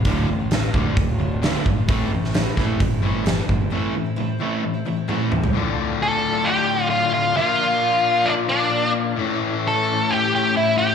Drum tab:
HH |o---o---o---o---|o---o---o---o---|----------------|----------------|
SD |----o-------o---|---oo-o-----o---|----------------|----------------|
T1 |----------------|----------------|------------o---|----------------|
T2 |----------------|----------------|--------------o-|----------------|
FT |----------------|----------------|---------------o|----------------|
BD |o-----o-o-----o-|o-----o-o-----o-|----------------|----------------|

HH |----------------|----------------|
SD |----------------|----------------|
T1 |----------------|----------------|
T2 |----------------|----------------|
FT |----------------|----------------|
BD |----------------|----------------|